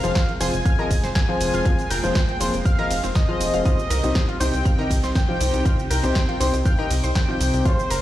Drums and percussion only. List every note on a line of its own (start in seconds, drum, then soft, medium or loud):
0.04 closed hi-hat medium
0.04 shaker soft
0.15 kick loud
0.15 snare loud
0.15 closed hi-hat medium
0.15 shaker soft
0.29 closed hi-hat soft
0.41 open hi-hat loud
0.41 ride medium
0.41 shaker medium
0.54 closed hi-hat medium
0.54 shaker soft
0.65 kick loud
0.65 closed hi-hat medium
0.65 shaker soft
0.90 kick medium
0.90 open hi-hat loud
0.90 ride medium
0.90 shaker medium
1.04 snare soft
1.04 closed hi-hat medium
1.04 shaker soft
1.15 kick loud
1.15 snare loud
1.15 closed hi-hat medium
1.15 shaker soft
1.41 open hi-hat loud
1.41 ride medium
1.41 shaker medium
1.54 closed hi-hat medium
1.54 shaker soft
1.65 kick loud
1.65 closed hi-hat medium
1.65 shaker soft
1.79 closed hi-hat soft
1.79 shaker soft
1.91 open hi-hat loud
1.91 ride medium
1.91 shaker medium
2.04 closed hi-hat soft
2.04 shaker soft
2.15 kick loud
2.15 snare loud
2.15 closed hi-hat medium
2.15 shaker soft
2.29 closed hi-hat soft
2.41 open hi-hat loud
2.41 ride medium
2.41 shaker medium
2.54 closed hi-hat soft
2.54 shaker soft
2.65 kick loud
2.65 closed hi-hat medium
2.65 shaker soft
2.79 closed hi-hat soft
2.91 open hi-hat loud
2.91 ride medium
2.91 shaker medium
3.04 closed hi-hat medium
3.04 shaker soft
3.15 kick loud
3.15 snare loud
3.15 closed hi-hat medium
3.15 shaker soft
3.41 open hi-hat loud
3.41 ride medium
3.41 shaker medium
3.54 closed hi-hat medium
3.54 shaker soft
3.65 kick loud
3.65 closed hi-hat medium
3.65 shaker soft
3.79 shaker soft
3.90 open hi-hat loud
3.90 ride medium
3.90 shaker medium
4.04 closed hi-hat medium
4.04 shaker soft
4.15 kick loud
4.15 snare loud
4.15 closed hi-hat medium
4.15 shaker soft
4.29 closed hi-hat soft
4.41 open hi-hat loud
4.41 ride medium
4.41 shaker medium
4.54 closed hi-hat soft
4.54 shaker soft
4.65 kick loud
4.65 closed hi-hat medium
4.65 shaker soft
4.90 kick medium
4.90 open hi-hat loud
4.90 ride medium
4.90 shaker medium
5.04 snare soft
5.04 closed hi-hat medium
5.04 shaker soft
5.15 kick loud
5.15 snare loud
5.15 closed hi-hat medium
5.15 shaker soft
5.41 open hi-hat loud
5.41 ride medium
5.41 shaker medium
5.54 closed hi-hat soft
5.54 shaker soft
5.65 kick loud
5.65 closed hi-hat medium
5.65 shaker soft
5.79 shaker soft
5.91 open hi-hat loud
5.91 ride medium
5.91 shaker medium
6.04 closed hi-hat medium
6.04 shaker soft
6.15 kick loud
6.15 snare loud
6.15 closed hi-hat medium
6.15 shaker soft
6.29 closed hi-hat soft
6.41 open hi-hat loud
6.41 ride medium
6.41 shaker medium
6.54 closed hi-hat medium
6.54 shaker soft
6.65 kick loud
6.65 closed hi-hat medium
6.65 shaker soft
6.91 open hi-hat loud
6.91 ride medium
6.91 shaker medium
7.04 closed hi-hat medium
7.04 shaker soft
7.15 kick loud
7.15 snare loud
7.15 closed hi-hat medium
7.15 shaker soft
7.41 open hi-hat loud
7.41 ride medium
7.41 shaker medium
7.54 closed hi-hat medium
7.54 shaker soft
7.65 kick loud
7.65 closed hi-hat medium
7.65 shaker soft
7.79 shaker soft
7.91 open hi-hat loud
7.91 ride medium
7.91 shaker medium